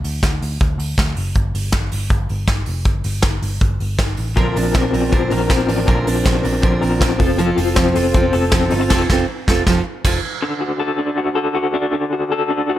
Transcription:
0.04 picked electric bass D2, open hi-hat
0.23 picked electric bass D2, kick, snare, closed hi-hat
0.42 picked electric bass D2, open hi-hat
0.61 picked electric bass D2, kick, closed hi-hat
0.78 picked electric bass D2, open hi-hat
0.98 picked electric bass D2, kick, snare, closed hi-hat
1.16 picked electric bass F#1, open hi-hat
1.35 picked electric bass G1, kick, closed hi-hat
1.54 picked electric bass G1, open hi-hat
1.72 picked electric bass G1, kick, snare, closed hi-hat
1.92 picked electric bass G1, open hi-hat
2.10 picked electric bass G1, kick, closed hi-hat
2.29 picked electric bass G1, open hi-hat
2.48 picked electric bass G1, kick, snare, closed hi-hat
2.66 picked electric bass F1, open hi-hat
2.85 picked electric bass G1, kick, closed hi-hat
3.04 picked electric bass G1, open hi-hat
3.22 picked electric bass G1, kick, snare, closed hi-hat
3.42 picked electric bass G1, open hi-hat
3.61 picked electric bass G1, kick, closed hi-hat
3.80 picked electric bass G1, open hi-hat
3.98 picked electric bass G1, kick, snare, closed hi-hat
4.17 picked electric bass A1, open hi-hat
4.37 picked electric bass A#1, steel-string acoustic guitar A#2 D3 F3 C4 D4 A#4, kick, closed hi-hat
4.56 picked electric bass A#1, steel-string acoustic guitar F3 C4 D4 A#4, open hi-hat
4.74 picked electric bass A#1, steel-string acoustic guitar F3 C4 D4 A#4, kick, snare
4.93 picked electric bass A#1, steel-string acoustic guitar F3 C4 D4 A#4, open hi-hat
5.12 picked electric bass A#1, steel-string acoustic guitar A#2 D3 F3 C4 D4 A#4, kick, closed hi-hat
5.30 picked electric bass A#1, steel-string acoustic guitar F3 C4 D4 A#4, open hi-hat
5.49 picked electric bass A#1, steel-string acoustic guitar F3 C4 D4 A#4, kick, snare, closed hi-hat
5.68 picked electric bass A1, steel-string acoustic guitar F3 C4 D4 A#4, open hi-hat
5.88 picked electric bass A#1, steel-string acoustic guitar A#2 D3 F3 C4 D4 A#4, kick, closed hi-hat
6.07 picked electric bass A#1, steel-string acoustic guitar F3 C4 D4 A#4, open hi-hat
6.25 picked electric bass A#1, steel-string acoustic guitar F3 C4 D4 A#4, kick, snare
6.43 picked electric bass A#1, steel-string acoustic guitar F3 C4 D4 A#4, open hi-hat
6.62 picked electric bass A#1, steel-string acoustic guitar A#2 D3 F3 C4 D4 A#4, kick, closed hi-hat
6.82 picked electric bass A#1, steel-string acoustic guitar F3 C4 D4 A#4, open hi-hat
7.01 picked electric bass A#1, steel-string acoustic guitar F3 C4 D4 A#4, kick, snare, closed hi-hat
7.19 picked electric bass F1, clean electric guitar F3, steel-string acoustic guitar C4 F4 A4, kick, open hi-hat
7.38 steel-string acoustic guitar F3 C4 F4 A4, closed hi-hat
7.57 picked electric bass F1, steel-string acoustic guitar C4 F4 A4, open hi-hat
7.76 picked electric bass F1, steel-string acoustic guitar F3 C4 F4 A4, kick, snare
7.95 picked electric bass F1, steel-string acoustic guitar C4 F4 A4, open hi-hat
8.14 picked electric bass F1, steel-string acoustic guitar F3 C4 F4 A4, kick, closed hi-hat
8.33 picked electric bass F1, steel-string acoustic guitar C4 F4 A4, open hi-hat
8.52 picked electric bass F1, steel-string acoustic guitar F3 C4 F4, kick, snare, closed hi-hat
8.56 steel-string acoustic guitar A4
8.70 picked electric bass G1, clean electric guitar D#4, steel-string acoustic guitar F4 A4, open hi-hat
8.75 steel-string acoustic guitar C4
8.81 clean electric guitar F4
8.90 picked electric bass F1, steel-string acoustic guitar F3, kick, snare, crash
8.94 steel-string acoustic guitar C4 F4 A4
9.10 picked electric bass F1, steel-string acoustic guitar C4 F4 A4, kick, snare
9.48 picked electric bass F1, steel-string acoustic guitar C4 F4 A4, kick, snare
9.67 picked electric bass F1, steel-string acoustic guitar F3 C4 F4 A4, kick, snare
10.04 picked electric bass F1, steel-string acoustic guitar F3 C4 F4 A4, kick, snare, crash
10.42 clean electric guitar D3
10.61 clean electric guitar F#4
10.80 clean electric guitar A4
10.98 clean electric guitar D4
11.17 clean electric guitar F#4
11.35 clean electric guitar A4
11.55 clean electric guitar F#4
11.74 clean electric guitar D4
11.93 clean electric guitar D3
12.13 clean electric guitar F#4
12.32 clean electric guitar A4
12.50 clean electric guitar D4
12.69 clean electric guitar F#4

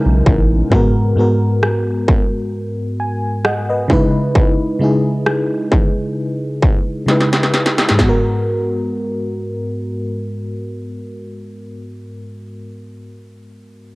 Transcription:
Already playing: analog synth pad B2 C#3 G#3 B3 C#4, fm electric piano C#3 G#3 D#4 E4 A#4
0.06 analog synth bass B1
0.26 analog synth bass A1, kick
0.70 fm electric piano G#2 G#3 B3 F#4, kick
0.75 fm electric piano A#4
1.16 fm electric piano G#2 G#3 B3 F#4
1.20 fm electric piano A#4
1.63 cross-stick
2.08 kick
3.00 fm electric piano G#5
3.45 fm electric piano D#5 F#5, cross-stick
3.70 fm electric piano B4 D#5
3.88 fm electric piano C#3 G#3 D#4 E4, kick
3.93 fm electric piano B4
4.35 kick
4.79 fm electric piano C#3 G#3 D#4 E4
4.84 fm electric piano G#4
5.26 cross-stick
5.72 kick
6.63 kick
7.06 fm electric piano C#3 G#3 D#4 E4, snare
7.11 fm electric piano B4
7.21 snare
7.33 snare
7.43 snare
7.54 snare
7.66 snare
7.78 snare
7.89 fm electric piano G#2, snare
7.95 fm electric piano G#3, kick, snare
8.00 fm electric piano B3
8.05 fm electric piano F#4
8.09 fm electric piano A#4

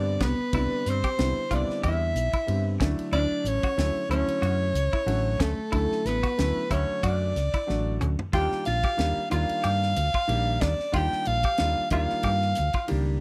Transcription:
Already playing: fretless electric bass G2, grand piano D3 G3 B3 C4 D4, hollow-body jazz guitar D4, soprano saxophone D5
0.20 fretless electric bass C2, clean electric guitar B3, soprano saxophone B4, kick, snare, hi-hat pedal, ride
0.25 hollow-body jazz guitar B3
0.39 muted fretless electric bass stroke
0.53 fretless electric bass C2, grand piano C3 D3 G3 B3 D4, clean electric guitar E4, kick, ride
0.86 fretless electric bass G2, soprano saxophone C5, snare, hi-hat pedal, ride
0.90 hollow-body jazz guitar C4
1.04 clean electric guitar G4, kick, ride
1.18 fretless electric bass C2, grand piano D3 G3 B3 C4 E4, snare, ride
1.50 fretless electric bass C2, grand piano D3 G3 B3 C4 E4, clean electric guitar F4, soprano saxophone D5, kick, hi-hat pedal, ride
1.56 hollow-body jazz guitar D4
1.69 muted fretless electric bass stroke, snare
1.83 fretless electric bass E2, clean electric guitar G4, soprano saxophone E5, kick, ride
1.88 hollow-body jazz guitar E4
2.15 fretless electric bass B1, hi-hat pedal, ride
2.33 clean electric guitar E4, muted fretless electric bass stroke, kick, ride
2.47 fretless electric bass G2, grand piano D3 G3 B3 C4 G4, ride
2.80 fretless electric bass D2, grand piano D3 F#3 A3 D4 E4, clean electric guitar C#4, kick, snare, hi-hat pedal, ride
2.99 ride
3.12 fretless electric bass D2, hollow-body jazz guitar D4, clean electric guitar E4, soprano saxophone D5, ride
3.44 fretless electric bass A1, hollow-body jazz guitar C#4, soprano saxophone C#5, hi-hat pedal, ride
3.63 clean electric guitar F#4, muted fretless electric bass stroke, kick, ride
3.77 fretless electric bass D2, grand piano D3 F#3 A3 C#4 E4, snare, ride
4.09 fretless electric bass D2, grand piano D3 F#3 A3 C#4 E4, clean electric guitar E4, soprano saxophone C#5, hi-hat pedal, ride
4.13 hollow-body jazz guitar C#4
4.28 muted fretless electric bass stroke, ride
4.42 fretless electric bass F#2, clean electric guitar F#4, ride
4.74 fretless electric bass C#2, hi-hat pedal, ride
4.93 clean electric guitar E4, muted fretless electric bass stroke, kick
5.06 fretless electric bass A1, grand piano D3 F#3 A3 C#4 F#4, ride
5.40 fretless electric bass D2, hollow-body jazz guitar A3, clean electric guitar C#4, soprano saxophone A4, kick, snare, hi-hat pedal, ride
5.58 muted fretless electric bass stroke
5.71 fretless electric bass D2, grand piano D3 F#3 A3 C#4 E4, clean electric guitar E4, kick, ride
5.92 snare
6.05 fretless electric bass A1, hollow-body jazz guitar B3, soprano saxophone B4, snare, hi-hat pedal, ride
6.23 clean electric guitar F#4, muted fretless electric bass stroke, kick, ride
6.38 fretless electric bass D2, grand piano D3 F#3 A3 C#4 E4, snare, ride
6.69 fretless electric bass D2, grand piano D3 F#3 A3 C#4 F#4, clean electric guitar E4, soprano saxophone C#5, kick, hi-hat pedal, ride
6.74 hollow-body jazz guitar C#4
7.03 fretless electric bass F#2, hollow-body jazz guitar D4, clean electric guitar F#4, soprano saxophone D5, kick, ride
7.36 fretless electric bass C#2, snare, hi-hat pedal, ride
7.54 clean electric guitar E4, muted fretless electric bass stroke, kick, ride
7.67 fretless electric bass A1, grand piano D3 F#3 A3 D4 F#4, snare
8.01 fretless electric bass D2, clean electric guitar C#4, hi-hat pedal, mid tom
8.19 muted fretless electric bass stroke, floor tom
8.32 fretless electric bass D#2, grand piano D#3 G3 A#3 D4 F4, clean electric guitar F4, hollow-body jazz guitar G4, soprano saxophone G5, kick, ride
8.52 muted fretless electric bass stroke, snare
8.65 fretless electric bass A#1, hollow-body jazz guitar F4, soprano saxophone F5, snare, hi-hat pedal, ride
8.83 clean electric guitar G4, muted fretless electric bass stroke, kick, ride
8.97 fretless electric bass D#2, grand piano D#3 G3 A#3 D4 G4, snare, ride
9.30 fretless electric bass D#2, grand piano D#3 G3 A#3 D4 F4, clean electric guitar F4, hollow-body jazz guitar F4, soprano saxophone F5, hi-hat pedal, ride
9.49 ride
9.64 fretless electric bass G2, clean electric guitar G4, ride
9.83 snare
9.96 fretless electric bass D2, hi-hat pedal, ride
10.14 clean electric guitar F4, kick
10.27 fretless electric bass A#1, grand piano D#3 G3 A#3 D4 G4, ride
10.61 fretless electric bass D#2, hollow-body jazz guitar D4, clean electric guitar D4, soprano saxophone D5, kick, snare, hi-hat pedal, ride
10.79 muted fretless electric bass stroke, snare
10.92 fretless electric bass D#2, grand piano D#3 G3 A#3 D4 F4, clean electric guitar F4, hollow-body jazz guitar G4, soprano saxophone G5, kick, ride
11.12 muted fretless electric bass stroke, snare
11.25 fretless electric bass A#1, hollow-body jazz guitar F4, soprano saxophone F5, hi-hat pedal, ride
11.43 clean electric guitar G4, muted fretless electric bass stroke, kick, ride
11.58 fretless electric bass D#2, grand piano D#3 G3 A#3 D4 F4, snare, ride
11.90 fretless electric bass D#2, grand piano D#3 G3 A#3 D4 F4, clean electric guitar F4, hollow-body jazz guitar F4, soprano saxophone F5, kick, hi-hat pedal, ride
12.09 muted fretless electric bass stroke, snare
12.23 fretless electric bass G2, clean electric guitar G4, kick, ride
12.42 snare
12.55 fretless electric bass D2, snare, hi-hat pedal, ride
12.73 clean electric guitar F4, kick, ride
12.88 fretless electric bass C#2, grand piano D#3 G3 A#3 D4 G4, ride

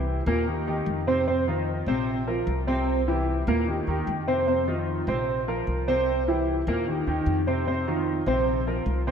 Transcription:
Already playing: upright bass C2, grand piano E3 E4 G4
0.26 upright bass D#2, grand piano A#2 A#3 A#4
0.47 grand piano D#3 D#4 G4
0.67 grand piano D#3 D#4 G4
0.86 upright bass F2
1.07 grand piano C3 C4 C5
1.27 grand piano C3 C4 C5
1.48 grand piano D#3 D#4 F4
1.86 upright bass A#1, grand piano C3 C4 C5
2.27 grand piano F3 F4 A#4
2.47 upright bass C2
2.67 grand piano C3 C4 C5
3.08 grand piano E3 E4 G4
3.47 upright bass D#2, grand piano A#2 A#3 A#4
3.67 grand piano D#3 D#4 G4
3.87 upright bass D#2, grand piano D#3 D#4 G4
4.07 upright bass F2
4.27 grand piano C3 C4 C5
4.47 grand piano C3 C4 C5
4.67 grand piano D#3 D#4 F4
5.07 upright bass A#1, grand piano C3 C4 C5
5.48 grand piano F3 F4 A#4
5.67 upright bass C2
5.88 grand piano C3 C4 C5
6.28 grand piano E3 E4 G4
6.67 upright bass D#2, grand piano A#2 A#3 A#4
6.88 grand piano D#3 D#4 G4
7.07 upright bass D#2, grand piano D#3 D#4 G4
7.26 upright bass F2
7.47 grand piano C3 C4 C5
7.67 grand piano C3 C4 C5
7.87 grand piano D#3 D#4 F4
8.26 upright bass A#1, grand piano C3 C4 C5
8.67 grand piano F3 F4 A#4
8.86 upright bass C2
9.07 grand piano C3 C4 C5

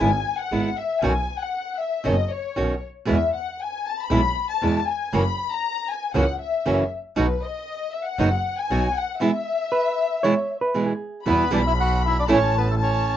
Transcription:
Already playing: violin section G#5
0.00 double bass G#1, nylon-string guitar B3 E4
0.38 violin section F#5
0.51 double bass G#1, nylon-string guitar G#3 B3 E4
0.76 violin section E5
1.02 double bass B1, nylon-string guitar B2 D#3 C#4 F#4, violin section G#5
1.41 violin section F#5
1.79 violin section E5
2.04 double bass F#1, nylon-string guitar B2 D#3 C#4 F#4, violin section D#5
2.31 violin section C#5
2.56 double bass B1, nylon-string guitar B2 D#3 C#4 F#4
3.05 double bass E2, nylon-string guitar B2 E3 G#3 B3 E4
3.10 violin section E5
3.34 violin section F#5
3.61 violin section G#5
3.87 violin section A5
4.00 violin section B5
4.10 double bass B1, nylon-string guitar B2 E3 G#3 B3 E4
4.50 violin section A5
4.62 double bass E2, nylon-string guitar B2 E3 G#3 B3 E4
4.88 violin section G#5
5.13 double bass F#1, nylon-string guitar C#3 E3 A#3 C#4 F#4, violin section B5
5.51 violin section A#5
5.89 violin section G#5
6.14 double bass C#2, nylon-string guitar C#3 E3 A#3 C#4 F#4, violin section F#5
6.40 violin section E5
6.66 double bass F#1, nylon-string guitar C#3 E3 A#3 C#4 F#4
7.16 double bass B1, nylon-string guitar B2 F#3 B3 D#4 F#4, violin section B4
7.43 violin section D#5
7.93 violin section E5
8.05 violin section F#5
8.18 double bass F#1, nylon-string guitar B2 F#3 B3 D#4 F#4
8.58 violin section G#5
8.70 double bass B1, nylon-string guitar B2 F#3 B3 D#4 F#4
8.96 violin section F#5
9.20 nylon-string guitar B2 E3 G#3 B3 E4, violin section E5
9.72 hollow-body jazz guitar B4
10.23 nylon-string guitar B2 E3 G#3 B3 E4, hollow-body jazz guitar C#5
10.61 hollow-body jazz guitar B4
10.74 nylon-string guitar B2 E3 G#3 B3 E4
10.86 hollow-body jazz guitar G#4
11.26 double bass E2, nylon-string guitar B2 E3 G3 B3 E4, bandoneon B3 B4, violin section B5
11.51 double bass B1, nylon-string guitar B2 E3 G3 B3 E4, bandoneon D4 D5
11.67 bandoneon E4 E5
11.80 bandoneon F#4 F#5
12.06 bandoneon E4 E5
12.19 bandoneon D4 D5
12.28 double bass A1, nylon-string guitar E3 A3 C#4 E4, violin section A5
12.32 bandoneon C#4 C#5
12.58 bandoneon B3 B4
12.70 bandoneon A3 A4
12.79 bandoneon C#4 C#5, violin section A5

